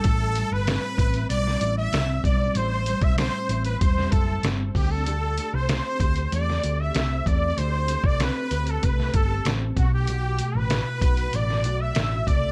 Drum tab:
HH |x-x-x-xxx-x-x-x-|x-xxx-xxx-x-x-o-|x-x-x-xxx-x-x-x-|x-x-x-xxx-x-x-x-|
SD |----o----o--o---|----o----o--o---|----o----o--o---|----o----o--o---|
BD |o-----o-------o-|---o----o-o---o-|------o-------o-|---o----o-o---o-|

HH |x-x-x-xxx-x-x-x-|
SD |----o----o--o---|
BD |------o-------o-|